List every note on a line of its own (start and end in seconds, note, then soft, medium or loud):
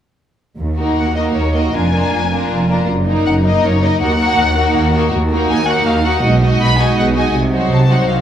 0.58 0.93 D#2 soft
0.77 1.16 A#3 soft
0.77 1.15 D#4 soft
0.77 1.15 F#4 soft
0.77 1.15 A#4 soft
0.97 1.31 D#2 soft
0.97 1.15 F#5 soft
1.15 1.54 A#3 soft
1.15 1.54 D#4 soft
1.15 1.54 F#4 soft
1.15 1.54 A#4 soft
1.15 1.23 D#5 medium
1.34 1.70 D#2 soft
1.34 1.54 C#5 medium
1.55 1.73 A#3 soft
1.55 1.74 D#4 soft
1.55 1.74 F#4 soft
1.55 1.73 A#4 soft
1.55 1.74 D#5 soft
1.74 2.08 F1 soft
1.74 2.08 F2 soft
1.74 1.92 A#3 soft
1.74 1.92 D4 soft
1.74 1.93 F4 soft
1.74 1.93 A#4 soft
1.74 2.69 G#5 medium
1.93 2.30 A#3 soft
1.93 2.31 D4 soft
1.93 2.31 F4 soft
1.93 2.31 A#4 soft
2.13 2.46 F1 soft
2.13 2.46 F2 soft
2.32 2.68 A#3 soft
2.32 2.68 D4 soft
2.32 2.68 F4 soft
2.32 2.69 A#4 soft
2.50 2.83 F1 soft
2.50 2.84 F2 soft
2.69 2.88 A#3 soft
2.69 2.88 D4 soft
2.69 2.88 F4 soft
2.69 2.88 A#4 soft
2.88 3.22 F#1 soft
2.88 3.21 F#2 soft
3.05 3.43 A#3 soft
3.05 3.43 D#4 soft
3.05 3.44 D#4 soft
3.05 3.44 A#4 soft
3.26 3.59 F#1 soft
3.26 3.59 F#2 medium
3.26 3.34 F#5 medium
3.44 3.80 A#3 soft
3.44 3.80 D#4 soft
3.44 3.81 D#4 soft
3.44 3.81 A#4 soft
3.44 3.64 D#5 medium
3.64 3.97 F#1 medium
3.64 3.97 F#2 medium
3.64 3.83 C#5 medium
3.81 3.99 A#3 soft
3.81 3.99 D#4 soft
3.81 4.01 D#4 soft
3.81 4.00 A#4 soft
3.81 4.01 D#5 medium
4.00 4.34 D#2 medium
4.00 4.18 A#3 soft
4.00 4.18 D#4 soft
4.00 4.17 F#4 soft
4.00 4.17 A#4 soft
4.00 4.93 F#5 medium
4.19 4.55 A#3 soft
4.19 4.56 D#4 soft
4.19 4.56 F#4 soft
4.19 4.56 A#4 soft
4.39 4.72 D#2 medium
4.57 4.94 A#3 soft
4.57 4.94 D#4 soft
4.57 4.93 F#4 soft
4.57 4.93 A#4 soft
4.76 5.09 D#2 medium
4.94 5.13 A#3 soft
4.94 5.13 D#4 soft
4.94 5.12 F#4 soft
4.94 5.12 A#4 soft
5.13 5.45 D#2 medium
5.30 5.66 A#3 soft
5.30 5.67 D#4 soft
5.30 5.65 F#4 soft
5.30 5.65 A#4 soft
5.50 5.82 D#2 medium
5.50 5.67 G#5 medium
5.66 6.04 A#3 soft
5.66 6.04 D#4 medium
5.66 6.02 F#4 soft
5.66 6.03 A#4 soft
5.66 5.87 F#5 medium
5.86 6.19 D#2 medium
5.86 6.05 F5 medium
6.04 6.23 A#3 soft
6.04 6.23 D#4 soft
6.04 6.21 F#4 soft
6.04 6.23 A#4 soft
6.04 6.24 F#5 medium
6.22 6.57 B1 medium
6.22 6.56 B2 medium
6.22 6.40 G#3 soft
6.22 6.40 D#4 soft
6.22 6.41 F#4 soft
6.22 6.41 D#5 soft
6.41 6.78 G#3 soft
6.41 6.78 D#4 soft
6.41 6.78 F#4 soft
6.41 6.77 D#5 medium
6.61 6.93 B1 medium
6.61 6.93 B2 medium
6.61 6.78 B5 medium
6.78 7.15 G#3 soft
6.78 7.15 D#4 soft
6.78 7.13 F#4 soft
6.78 7.13 D#5 soft
6.78 6.98 G#5 medium
6.97 7.30 B1 medium
6.97 7.29 B2 medium
6.97 7.05 F#5 medium
7.14 7.34 G#3 soft
7.14 7.34 D#4 soft
7.14 7.33 F#4 soft
7.14 7.33 D#5 soft
7.14 7.35 G#5 medium
7.34 7.67 C2 medium
7.34 7.66 C3 medium
7.51 7.88 F#3 soft
7.51 7.87 D#4 soft
7.51 7.87 F#4 soft
7.51 7.87 C5 soft
7.71 8.04 C2 soft
7.71 8.04 C3 soft
7.71 7.89 A5 medium
7.88 8.21 F#3 soft
7.88 8.21 D#4 soft
7.88 8.21 F#4 soft
7.88 8.21 C5 soft
7.88 8.09 F#5 medium
8.08 8.21 C2 soft
8.08 8.21 C3 soft
8.08 8.16 F5 medium